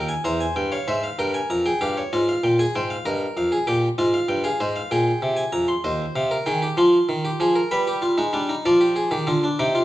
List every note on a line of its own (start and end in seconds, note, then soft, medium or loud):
0.00 0.12 D#2 medium
0.00 0.13 A#4 medium
0.09 0.24 G#5 medium
0.24 0.44 E2 medium
0.24 0.70 C5 medium
0.24 0.40 A#5 medium
0.40 0.56 G#5 medium
0.56 0.76 G2 medium
0.56 0.71 G5 medium
0.72 0.87 C#5 medium
0.72 0.87 F5 medium
0.88 1.07 G#2 medium
0.88 1.07 C5 medium
0.88 1.03 E5 medium
1.04 1.18 F5 medium
1.19 1.38 G2 medium
1.19 1.64 A#4 medium
1.19 1.34 G5 medium
1.34 1.49 G#5 medium
1.50 1.70 F2 medium
1.50 1.65 A#5 medium
1.66 1.81 G#4 medium
1.66 1.81 G5 medium
1.81 2.01 G2 medium
1.81 2.01 G4 medium
1.81 1.97 F5 medium
1.97 2.13 C#5 medium
2.13 2.33 G#2 medium
2.13 2.59 F4 medium
2.13 2.28 D#5 medium
2.29 2.44 F5 medium
2.44 2.63 A#2 medium
2.44 2.59 G5 medium
2.59 2.75 G#4 medium
2.59 2.75 G#5 medium
2.75 2.95 G#2 medium
2.75 2.95 C5 medium
2.75 2.90 G5 medium
2.90 3.06 F5 medium
3.06 3.25 G2 medium
3.06 3.51 A#4 medium
3.06 3.25 D#5 medium
3.37 3.56 F2 medium
3.37 3.56 F5 medium
3.52 3.67 G#4 medium
3.67 3.87 A#2 medium
3.67 3.87 G4 medium
3.67 3.87 G5 medium
3.98 4.18 G#2 medium
3.98 4.43 F4 medium
3.98 4.13 D#5 medium
4.14 4.29 F5 medium
4.29 4.48 G2 medium
4.29 4.44 G5 medium
4.44 4.60 G#4 medium
4.44 4.59 F5 medium
4.60 4.80 G#2 medium
4.60 4.79 C5 medium
4.60 4.75 D#5 medium
4.76 4.91 F5 medium
4.91 5.10 A#2 medium
4.91 5.81 G#4 medium
4.91 5.36 G5 medium
5.22 5.41 C3 medium
5.37 5.52 G#5 medium
5.52 5.72 F2 medium
5.52 5.68 A#5 medium
5.68 5.83 C6 medium
5.84 6.04 D#2 medium
5.84 6.30 C5 medium
5.84 6.04 D#5 medium
6.16 6.35 C3 medium
6.16 6.35 F5 medium
6.31 6.46 A#4 medium
6.46 6.66 D#3 medium
6.46 6.62 G#4 medium
6.46 6.66 G5 medium
6.62 6.77 G4 medium
6.77 6.97 F3 medium
6.77 7.23 F4 medium
6.77 7.68 C6 medium
7.09 7.28 D#3 medium
7.25 7.40 G4 medium
7.40 7.59 F3 medium
7.40 7.56 G#4 medium
7.56 7.71 A#4 medium
7.71 8.17 G3 medium
7.71 7.87 B4 medium
7.71 8.62 B5 medium
7.87 8.02 G4 medium
8.02 8.17 F4 medium
8.18 8.33 G#3 medium
8.18 8.33 D#4 medium
8.33 8.53 G3 medium
8.33 8.49 D4 medium
8.49 8.65 D#4 medium
8.66 9.11 F3 medium
8.66 8.81 F4 medium
8.66 9.57 D5 medium
8.81 8.96 G4 medium
8.96 9.11 G#4 medium
9.11 9.27 D#3 medium
9.11 9.27 G4 medium
9.27 9.47 D3 medium
9.27 9.43 F4 medium
9.44 9.59 D4 medium
9.59 9.85 C3 loud
9.59 9.75 D#4 medium
9.59 9.79 G5 medium
9.75 9.85 F4 medium